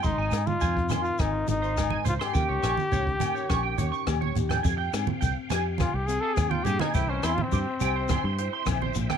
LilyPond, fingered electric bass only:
\new Staff \with { instrumentName = "Fingered electric bass" } { \clef bass \time 4/4 \key f \minor \tempo 4 = 104 aes,,16 aes,,16 aes,8 f,4 aes,,8 aes,,4 des,16 r16 | ees,16 des,16 bes,,16 r16 des,8 r8 bes,,8 ees,16 r16 ees,8 ees,8 | f,8 aes,16 r16 c,16 r16 f,8. c,8 r16 ees,8 g,16 r16 | c,8 e,16 r16 g,16 r16 c,8. g,8 r16 bes,,8 bes,,16 r16 | }